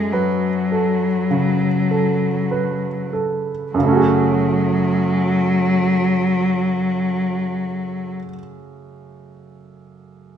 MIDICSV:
0, 0, Header, 1, 3, 480
1, 0, Start_track
1, 0, Key_signature, 3, "minor"
1, 0, Tempo, 1169591
1, 532, Tempo, 1221996
1, 1492, Time_signature, 4, 2, 24, 8
1, 1492, Tempo, 1158301
1, 2932, Tempo, 1094891
1, 4316, End_track
2, 0, Start_track
2, 0, Title_t, "Grand piano"
2, 0, Program_c, 0, 0
2, 0, Control_c, 0, 64, 127
2, 0, Note_on_c, 0, 42, 36
2, 0, Note_on_c, 0, 69, 29
2, 54, Note_on_c, 0, 71, 31
2, 197, Note_off_c, 0, 69, 0
2, 295, Note_on_c, 0, 69, 27
2, 436, Note_off_c, 0, 71, 0
2, 515, Note_off_c, 0, 42, 0
2, 536, Note_on_c, 0, 49, 28
2, 675, Note_off_c, 0, 69, 0
2, 773, Note_on_c, 0, 69, 28
2, 912, Note_off_c, 0, 49, 0
2, 1009, Note_on_c, 0, 71, 28
2, 1154, Note_off_c, 0, 69, 0
2, 1252, Note_on_c, 0, 69, 26
2, 1401, Note_off_c, 0, 71, 0
2, 1493, Note_off_c, 0, 69, 0
2, 1493, Note_on_c, 0, 42, 38
2, 1503, Control_c, 0, 64, 0
2, 1510, Note_on_c, 0, 49, 31
2, 1530, Note_on_c, 0, 57, 32
2, 1549, Note_on_c, 0, 61, 29
2, 1567, Note_on_c, 0, 66, 30
2, 1585, Note_on_c, 0, 68, 33
2, 1598, Control_c, 0, 64, 127
2, 3343, Note_off_c, 0, 42, 0
2, 3361, Note_off_c, 0, 49, 0
2, 3382, Note_off_c, 0, 57, 0
2, 3402, Note_off_c, 0, 61, 0
2, 3421, Note_off_c, 0, 66, 0
2, 3441, Note_off_c, 0, 68, 0
2, 4316, End_track
3, 0, Start_track
3, 0, Title_t, "Cello"
3, 0, Program_c, 1, 42
3, 0, Note_on_c, 1, 56, 58
3, 50, Note_on_c, 1, 54, 44
3, 56, Note_off_c, 1, 56, 0
3, 1251, Note_off_c, 1, 54, 0
3, 1485, Note_on_c, 1, 54, 47
3, 3334, Note_off_c, 1, 54, 0
3, 4316, End_track
0, 0, End_of_file